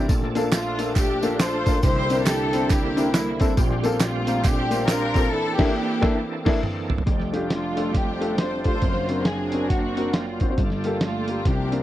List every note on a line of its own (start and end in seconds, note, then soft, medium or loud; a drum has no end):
0.08 1.79 A#1 medium
0.08 1.80 A#2 medium
0.08 1.79 F3 medium
0.08 1.79 A3 medium
0.08 1.79 D4 medium
0.08 1.79 A4 medium
0.08 kick loud
0.08 closed hi-hat medium
0.08 tambourine medium
0.22 snare soft
0.35 0.47 A#3 medium
0.35 0.47 D4 medium
0.35 0.47 F4 medium
0.35 0.47 A4 medium
0.35 closed hi-hat medium
0.35 tambourine medium
0.52 1.36 A3 medium
0.52 0.96 D4 medium
0.52 0.94 F4 medium
0.52 snare loud
0.52 clap medium
0.52 closed hi-hat medium
0.52 tambourine medium
0.78 0.90 A#3 medium
0.78 0.90 D4 medium
0.78 0.91 F4 medium
0.78 0.91 A4 medium
0.78 closed hi-hat medium
0.78 tambourine medium
0.96 1.80 D4 medium
0.96 1.40 G4 medium
0.96 kick loud
0.96 snare soft
0.96 clap medium
0.96 closed hi-hat medium
0.96 tambourine medium
1.22 1.34 A#3 medium
1.22 1.34 D4 medium
1.22 1.34 F4 medium
1.22 1.35 A4 medium
1.22 closed hi-hat medium
1.22 tambourine medium
1.39 1.81 F4 medium
1.39 1.80 A4 medium
1.39 1.83 C5 loud
1.39 snare loud
1.39 clap medium
1.39 closed hi-hat loud
1.39 tambourine medium
1.66 1.78 A#3 medium
1.66 1.78 D4 medium
1.66 1.78 F4 medium
1.66 1.78 A#4 medium
1.66 kick loud
1.66 closed hi-hat medium
1.66 tambourine medium
1.83 3.54 C2 medium
1.83 3.54 C3 medium
1.83 3.54 D3 medium
1.83 3.54 A#3 medium
1.83 3.54 C4 medium
1.83 3.54 E4 medium
1.83 2.27 E4 medium
1.83 2.67 G4 medium
1.83 2.24 C5 loud
1.83 kick loud
1.83 closed hi-hat medium
1.83 tambourine medium
1.96 snare soft
2.10 2.21 C4 medium
2.10 2.22 D4 medium
2.10 2.22 E4 medium
2.10 2.22 A#4 medium
2.10 closed hi-hat medium
2.10 tambourine medium
2.26 3.11 D4 medium
2.26 2.70 E4 medium
2.26 2.71 A4 loud
2.26 snare loud
2.26 clap loud
2.26 closed hi-hat medium
2.26 tambourine loud
2.53 2.65 C4 medium
2.53 2.65 D4 medium
2.53 2.65 E4 medium
2.53 2.65 C5 medium
2.53 closed hi-hat medium
2.53 tambourine soft
2.70 3.14 A#3 medium
2.70 3.14 E4 medium
2.70 3.15 G4 loud
2.70 kick loud
2.70 snare soft
2.70 clap medium
2.70 closed hi-hat medium
2.70 tambourine medium
2.96 3.08 C4 medium
2.96 3.08 D4 medium
2.96 3.09 E4 medium
2.96 3.09 A#4 medium
2.96 closed hi-hat medium
2.96 tambourine medium
3.14 3.55 G3 medium
3.14 3.55 A#3 medium
3.14 3.50 E4 medium
3.14 snare loud
3.14 clap medium
3.14 closed hi-hat loud
3.14 tambourine medium
3.40 3.52 C4 medium
3.40 3.52 D4 medium
3.40 3.52 E4 medium
3.40 3.52 A4 medium
3.40 kick loud
3.40 closed hi-hat medium
3.40 tambourine medium
3.57 5.28 A#1 medium
3.57 5.28 A#2 medium
3.57 5.29 G3 medium
3.57 5.28 C4 medium
3.57 5.29 D4 medium
3.57 5.28 F4 medium
3.57 5.28 G4 medium
3.57 kick loud
3.57 closed hi-hat medium
3.57 tambourine medium
3.70 snare soft
3.83 3.95 A#3 medium
3.83 3.96 C4 medium
3.83 3.96 F4 medium
3.83 3.96 A4 loud
3.83 closed hi-hat medium
3.83 tambourine medium
4.00 4.85 A3 medium
4.00 4.45 C4 medium
4.00 4.42 F4 medium
4.00 snare loud
4.00 clap loud
4.00 closed hi-hat medium
4.00 tambourine loud
4.27 4.39 A#3 medium
4.27 4.39 C4 medium
4.27 4.39 F4 medium
4.27 4.39 A#4 medium
4.27 closed hi-hat medium
4.27 tambourine medium
4.44 5.29 C4 medium
4.44 4.88 D4 medium
4.44 4.88 G4 loud
4.44 kick loud
4.44 snare soft
4.44 clap medium
4.44 closed hi-hat medium
4.44 tambourine medium
4.70 4.82 A#3 medium
4.70 4.83 C4 medium
4.70 4.83 F4 medium
4.70 4.83 C5 medium
4.70 closed hi-hat medium
4.70 tambourine medium
4.87 5.29 D4 medium
4.87 5.29 F4 medium
4.87 5.31 A#4 loud
4.87 snare loud
4.87 clap medium
4.87 closed hi-hat loud
4.87 tambourine loud
5.14 5.26 A#3 medium
5.14 5.26 C4 medium
5.14 5.27 F4 medium
5.14 5.27 A4 medium
5.14 kick loud
5.14 closed hi-hat medium
5.14 tambourine medium
5.30 7.03 E3 medium
5.30 7.04 A#3 medium
5.30 7.03 C4 medium
5.30 7.04 D4 medium
5.30 6.16 D4 medium
5.30 5.57 E4 medium
5.30 5.58 A4 loud
5.30 7.04 A4 medium
5.57 5.70 A#3 loud
5.57 6.42 A#3 medium
5.57 5.70 D4 loud
5.57 6.42 E4 medium
5.57 5.70 E4 loud
5.57 6.45 G4 loud
5.57 5.71 A4 medium
5.57 kick loud
5.57 snare loud
5.57 crash medium
6.01 6.13 A#3 medium
6.01 6.14 D4 loud
6.01 6.14 E4 medium
6.01 6.14 A4 loud
6.01 kick loud
6.01 snare loud
6.45 6.57 A#3 loud
6.45 6.58 D4 loud
6.45 6.58 E4 loud
6.45 6.58 A4 medium
6.45 kick loud
6.45 snare loud
6.45 crash medium
6.63 mid tom medium
6.90 floor tom loud
6.98 floor tom medium
7.06 8.78 F1 medium
7.06 8.78 F2 medium
7.06 8.79 F3 medium
7.06 8.80 G3 medium
7.06 7.14 G#3 soft
7.06 8.80 A3 medium
7.06 8.79 D4 medium
7.06 8.81 D4 medium
7.06 8.80 F4 medium
7.06 8.79 G4 medium
7.06 kick loud
7.06 closed hi-hat medium
7.12 8.81 A3 medium
7.20 snare soft
7.32 7.45 A3 medium
7.32 7.45 D4 medium
7.32 7.45 F4 medium
7.32 7.46 G4 medium
7.32 closed hi-hat medium
7.50 8.35 A3 medium
7.50 7.94 D4 medium
7.50 7.92 F4 medium
7.50 snare loud
7.50 closed hi-hat medium
7.76 7.88 A3 medium
7.76 7.89 D4 medium
7.76 7.89 F4 medium
7.76 7.89 A4 medium
7.76 closed hi-hat medium
7.94 8.79 C4 medium
7.94 8.79 D4 medium
7.94 8.38 G4 medium
7.94 kick medium
7.94 snare soft
7.94 closed hi-hat medium
8.20 8.32 A3 medium
8.20 8.33 D4 medium
8.20 8.33 F4 medium
8.20 8.33 A4 medium
8.20 closed hi-hat medium
8.37 8.62 C5 medium
8.37 snare loud
8.37 closed hi-hat medium
8.64 8.67 A3 medium
8.64 8.68 D4 medium
8.64 9.49 F4 medium
8.64 8.68 F4 medium
8.64 8.68 G4 medium
8.64 9.21 C5 loud
8.64 kick medium
8.64 closed hi-hat medium
8.74 8.83 A3 medium
8.74 8.83 D4 medium
8.74 8.83 F4 medium
8.74 8.83 A4 medium
8.82 10.54 F#1 medium
8.82 10.54 F#2 medium
8.82 10.54 F#3 medium
8.82 10.56 F#3 medium
8.82 10.54 C4 soft
8.82 10.56 C4 medium
8.82 10.54 D4 soft
8.82 10.56 D4 medium
8.82 10.54 A#4 medium
8.82 kick loud
8.82 closed hi-hat medium
8.95 snare soft
9.09 9.20 C4 medium
9.09 9.21 D4 medium
9.09 9.21 F#4 medium
9.09 9.21 A#4 medium
9.09 closed hi-hat medium
9.24 9.69 C4 medium
9.24 10.10 D4 medium
9.24 9.69 G#4 medium
9.24 snare loud
9.24 closed hi-hat medium
9.52 9.65 C4 medium
9.52 9.65 D4 medium
9.52 9.65 F#4 medium
9.52 9.65 A#4 medium
9.52 closed hi-hat medium
9.69 10.13 A#3 medium
9.69 10.12 C4 medium
9.69 10.14 F#4 medium
9.69 kick medium
9.69 snare soft
9.69 closed hi-hat medium
9.97 10.08 C4 medium
9.97 10.08 D4 medium
9.97 10.09 F#4 medium
9.97 10.09 A#4 medium
9.97 closed hi-hat medium
10.13 10.55 A#3 soft
10.13 10.55 C4 soft
10.13 10.49 F4 medium
10.13 snare loud
10.13 closed hi-hat medium
10.40 10.43 C4 medium
10.40 10.44 D4 medium
10.40 10.44 F#4 medium
10.40 10.44 C5 medium
10.40 kick medium
10.40 closed hi-hat medium
10.48 10.58 C4 medium
10.48 10.58 D4 medium
10.48 10.58 F#4 medium
10.48 10.58 C5 medium
10.57 11.42 G1 medium
10.57 11.42 G2 medium
10.57 11.44 G3 medium
10.57 11.44 D4 soft
10.57 11.44 F4 medium
10.57 11.44 A4 medium
10.57 kick loud
10.57 closed hi-hat medium
10.70 snare soft
10.84 10.96 A#3 medium
10.84 10.96 F4 medium
10.84 10.97 G4 medium
10.84 10.97 A4 medium
10.84 closed hi-hat medium
11.01 11.43 A3 medium
11.01 11.42 A#3 medium
11.01 11.42 F4 medium
11.01 snare loud
11.01 closed hi-hat medium
11.28 11.40 A#3 medium
11.28 11.40 F4 medium
11.28 11.40 G4 medium
11.28 11.41 A#4 medium
11.28 closed hi-hat medium
11.45 11.83 C2 medium
11.45 11.83 C3 medium
11.45 11.52 E3 soft
11.45 11.83 F3 medium
11.45 11.83 A#3 medium
11.45 11.83 C4 medium
11.45 11.83 D4 soft
11.45 11.83 D4 medium
11.45 11.83 G4 medium
11.45 11.83 A#4 medium
11.45 kick loud
11.45 snare soft
11.45 closed hi-hat medium
11.50 11.83 F3 medium
11.71 11.83 C4 medium
11.71 11.83 D4 medium
11.71 11.83 F4 medium
11.71 11.83 A#4 medium
11.71 closed hi-hat medium